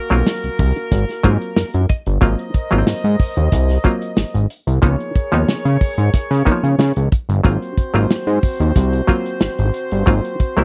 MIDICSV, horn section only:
0, 0, Header, 1, 2, 480
1, 0, Start_track
1, 0, Tempo, 654308
1, 1626, Time_signature, 4, 2, 24, 8
1, 7807, End_track
2, 0, Start_track
2, 0, Title_t, "Horn section"
2, 0, Program_c, 0, 61
2, 0, Note_on_c, 0, 58, 84
2, 0, Note_on_c, 0, 66, 87
2, 0, Note_on_c, 0, 70, 94
2, 1359, Note_off_c, 0, 66, 0
2, 1360, Note_off_c, 0, 70, 0
2, 1361, Note_off_c, 0, 58, 0
2, 1624, Note_on_c, 0, 72, 73
2, 1627, Note_on_c, 0, 70, 78
2, 1628, Note_on_c, 0, 75, 84
2, 3272, Note_off_c, 0, 72, 0
2, 3274, Note_off_c, 0, 70, 0
2, 3274, Note_off_c, 0, 75, 0
2, 3540, Note_on_c, 0, 68, 81
2, 3543, Note_on_c, 0, 70, 75
2, 3543, Note_on_c, 0, 73, 90
2, 5191, Note_off_c, 0, 68, 0
2, 5192, Note_off_c, 0, 73, 0
2, 5193, Note_off_c, 0, 70, 0
2, 5471, Note_on_c, 0, 72, 83
2, 5472, Note_on_c, 0, 60, 71
2, 5472, Note_on_c, 0, 66, 81
2, 7807, Note_off_c, 0, 60, 0
2, 7807, Note_off_c, 0, 66, 0
2, 7807, Note_off_c, 0, 72, 0
2, 7807, End_track
0, 0, End_of_file